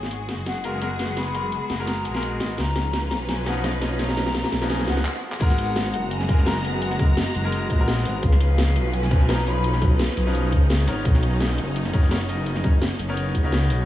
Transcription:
Already playing: G#1 G#3 B3 F#4 G#4 G#5
0.03 snare
0.11 closed hi-hat
0.29 F#1, snare, closed hi-hat
0.46 F#5, snare, closed hi-hat
0.63 G#3 B3 F#4 A#4 F5, closed hi-hat
0.81 G#3 B3 F#4 A#4 F#5, closed hi-hat
0.99 G#3 B3 F#4 B4, snare, closed hi-hat
1.16 B5, snare, closed hi-hat
1.34 G#3 B3 F#4 A#4, closed hi-hat
1.52 closed hi-hat
1.70 F#1, snare, closed hi-hat
1.79 G#3 B3 F#4 A#4
1.87 A#5, snare, closed hi-hat
2.05 A#1 G#5, closed hi-hat
2.13 G#3 B3 F#4 A#4, snare
2.23 D#5, closed hi-hat
2.40 G#1, snare, closed hi-hat
2.58 C#2 F3 C#4 D#4 B4 A#5, snare, closed hi-hat
2.76 snare, closed hi-hat
2.93 snare, closed hi-hat
3.11 B1, snare, closed hi-hat
3.28 G#5, snare, closed hi-hat
3.46 F3 C#4 D#4 B4 F#5, snare, closed hi-hat
3.64 F3 C#4 D#4 B4 D#5, snare, closed hi-hat
3.81 F3 C#4 D#4 C#5, snare, open hi-hat
3.99 A#5, snare, closed hi-hat
4.09 snare
4.17 F3 C#4 D#4 B4, snare, closed hi-hat
4.26 snare
4.35 snare, closed hi-hat
4.44 snare
4.52 B1, snare, closed hi-hat
4.61 F3 C#4 D#4 B4, snare
4.70 G#5, snare, closed hi-hat
4.79 snare
4.87 C#2 F#5, snare, closed hi-hat
4.97 snare
5.05 clap
5.32 clap
5.39 G#1 G#3 B3 F#4 A#4 F#5 A#5, kick, closed hi-hat, crash
5.50 snare
5.58 closed hi-hat
5.76 snare, closed hi-hat
5.93 F#1, closed hi-hat
6.11 G#5, closed hi-hat
6.21 snare
6.28 G#3 B3 F#4 A#4, kick, closed hi-hat
6.38 snare
6.46 G#3 B3 F#4 A#4 A#5, snare, closed hi-hat
6.63 G#3 B3 F#4 B4 G#5, open hi-hat
6.82 F#5, closed hi-hat
6.91 snare
6.99 G#3 B3 F#4 A#4 D#5, kick, closed hi-hat
7.17 snare, closed hi-hat
7.27 snare
7.35 F#1, closed hi-hat
7.44 G#3 B3 F#4 A#4
7.52 closed hi-hat
7.70 A#1, kick, closed hi-hat
7.78 G#3 B3 F#4 A#4
7.88 snare, closed hi-hat
8.05 G#1, snare, open hi-hat
8.23 C#2 F3 C#4 D#4 B4 F5, kick, closed hi-hat
8.32 snare
8.41 closed hi-hat
8.58 snare, closed hi-hat
8.76 B1, closed hi-hat
8.94 G#5, closed hi-hat
9.03 snare
9.10 F3 C#4 D#4 B4, kick, closed hi-hat
9.21 snare
9.28 F3 C#4 D#4 B4 A#5, snare, closed hi-hat
9.46 F3 C#4 D#4 C#5 B5, open hi-hat
9.64 closed hi-hat
9.74 snare
9.81 F3 C#4 D#4 B4, kick, closed hi-hat
9.99 snare, closed hi-hat
10.09 snare
10.17 B1, closed hi-hat
10.26 F3 C#4 D#4 B4
10.35 closed hi-hat
10.52 C#2, kick, closed hi-hat
10.70 snare, closed hi-hat
10.86 G#1 B3 D#4 A#4 C#5, snare, open hi-hat
11.05 B1, kick, closed hi-hat
11.15 snare
11.23 closed hi-hat
11.40 snare, closed hi-hat
11.58 F#1, closed hi-hat
11.76 closed hi-hat
11.85 snare
11.93 B3 D#4 A#4 C#5, kick, closed hi-hat
12.03 snare
12.11 B3 D#4 A#4 C#5, snare, closed hi-hat
12.29 B3 D#4 A#4 D#5, open hi-hat
12.46 closed hi-hat
12.56 snare
12.64 B3 D#4 A#4 C#5, kick, closed hi-hat
12.82 snare, closed hi-hat
12.91 snare
12.99 F#1, closed hi-hat
13.08 B3 D#4 A#4 C#5
13.17 closed hi-hat
13.35 C#2, kick, closed hi-hat
13.43 B3 D#4 A#4 C#5
13.52 snare, closed hi-hat
13.70 B1, snare, open hi-hat

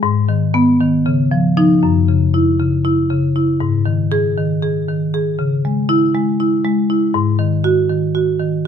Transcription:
0.03 G#2
0.29 D#3
0.54 B3
0.81 D#3
1.06 C#3
1.31 F3
1.57 F3 D#4
1.83 F#2
2.08 C#3
2.34 E4
2.59 C#3
2.85 E4
3.10 C#3
3.36 E4
3.60 G#2
3.86 D#3
4.12 G#4
4.37 D#3
4.62 G#4
4.88 D#3
5.14 G#4
5.39 C#3
5.65 G#3
5.89 E4
6.15 G#3
6.40 E4
6.65 G#3
6.90 E4
7.14 G#2
7.39 D#3
7.64 F#4
7.89 D#3
8.15 F#4
8.40 D#3

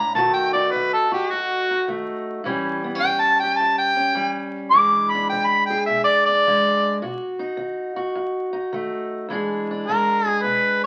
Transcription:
Already playing: D4 A#5
0.00 A2
0.15 B2 D#3 A3 D#4 F#4 A5
0.33 G5
0.53 D#4 D5
0.72 D#3 B4
0.93 A4
1.12 F#4 G4
1.30 F#2 F#4
1.71 D#4
1.88 D#3 A3
2.44 A2 E3 G3 C#4 G4
2.84 B3
2.95 C#4
3.00 G5
3.04 E3
3.20 A5
3.40 G4 G5
3.58 E2 A5
3.78 G5
3.96 C#4
4.15 E3 G3
4.71 E2 E3 G#3 D4 G#4 D6
5.10 B5
5.15 D4
5.29 E3 G5
5.47 B5
5.66 G5
5.70 G#4
5.86 B2 E5
6.04 D5
6.26 D4 D5
6.47 E3 G#3
7.02 B2 F#4
7.39 D#4
7.57 D#3
7.96 F#4
8.15 F#2
8.53 D#4
8.73 D#3 A3
9.29 E2 E3 G#3 D4 G#4
9.71 D4
9.86 E3 G#3 A#4
10.26 G#4
10.42 B2 B4

